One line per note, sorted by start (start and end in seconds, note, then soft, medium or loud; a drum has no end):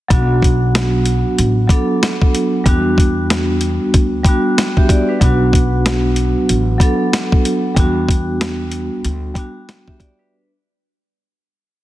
0.09 1.21 B1 loud
0.09 1.32 F#3 medium
0.09 1.33 B3 medium
0.09 1.33 D4 medium
0.09 kick loud
0.09 closed hi-hat medium
0.14 1.34 F#4 loud
0.42 kick medium
0.42 closed hi-hat medium
0.75 snare loud
0.75 closed hi-hat loud
1.06 closed hi-hat medium
1.38 1.65 A1 medium
1.38 closed hi-hat medium
1.67 2.60 F#3 medium
1.67 2.61 B3 medium
1.67 2.62 D4 medium
1.67 kick loud
1.67 closed hi-hat medium
1.72 2.63 A4 medium
2.03 snare loud
2.03 closed hi-hat medium
2.22 kick medium
2.35 closed hi-hat medium
2.64 3.77 E2 loud
2.64 3.87 G3 medium
2.64 3.88 B3 medium
2.64 3.88 D4 medium
2.64 kick loud
2.64 closed hi-hat medium
2.69 3.89 F#4 medium
2.98 kick medium
2.98 closed hi-hat medium
3.30 snare loud
3.30 closed hi-hat loud
3.61 closed hi-hat medium
3.94 4.21 D2 medium
3.94 kick medium
3.94 closed hi-hat medium
4.23 5.16 G3 medium
4.23 5.17 B3 medium
4.23 4.58 D4 medium
4.23 kick loud
4.23 closed hi-hat medium
4.28 4.59 F#4 medium
4.58 snare loud
4.58 closed hi-hat medium
4.77 4.89 G4 medium
4.77 4.89 E5 medium
4.77 kick medium
4.89 5.07 D5 medium
4.89 kick loud
4.89 closed hi-hat medium
5.09 5.21 D4 medium
5.09 5.39 B4 medium
5.19 6.32 B1 loud
5.19 6.42 F#3 medium
5.19 6.43 B3 medium
5.19 6.44 D4 medium
5.19 kick loud
5.19 closed hi-hat medium
5.24 6.45 F#4 loud
5.53 kick medium
5.53 closed hi-hat medium
5.86 snare loud
5.86 closed hi-hat medium
6.16 closed hi-hat medium
6.49 6.76 A1 medium
6.49 closed hi-hat medium
6.78 7.71 F#3 medium
6.78 7.72 B3 medium
6.78 7.73 D4 medium
6.78 kick medium
6.78 closed hi-hat medium
6.83 7.73 A4 medium
7.13 snare loud
7.13 closed hi-hat medium
7.32 kick medium
7.45 closed hi-hat medium
7.75 8.87 E2 loud
7.75 8.98 G3 medium
7.75 8.98 B3 medium
7.75 8.99 D4 medium
7.75 kick loud
7.75 closed hi-hat medium
7.80 9.00 F#4 medium
8.09 kick medium
8.09 closed hi-hat medium
8.41 snare loud
8.41 closed hi-hat medium
8.72 closed hi-hat medium
9.05 9.31 D2 loud
9.05 closed hi-hat medium
9.35 10.27 G3 medium
9.35 10.28 B3 medium
9.35 9.69 D4 medium
9.35 kick loud
9.35 closed hi-hat medium
9.39 9.70 F#4 medium
9.69 snare loud
9.69 closed hi-hat medium
9.88 10.00 G4 medium
9.88 10.00 E5 medium
9.88 kick medium
10.00 10.18 D5 medium
10.00 kick loud
10.00 closed hi-hat medium
10.19 10.50 D4 medium
10.19 10.49 B4 medium